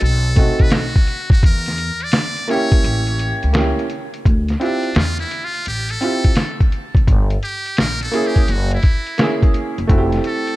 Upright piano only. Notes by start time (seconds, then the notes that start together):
0.36 A3 C4 D#4 F#4
2.48 A#3 C#4 E4 G4
3.53 A#3 C#4 E4
3.57 G4
4.60 C4 E4 F4 G4
6.01 C4 E4 F4 G4
8.11 A#3 C#4 E4 G#4
9.18 A#3 C#4 E4 G#4
9.87 A3 C4 E4 F#4
9.98 G4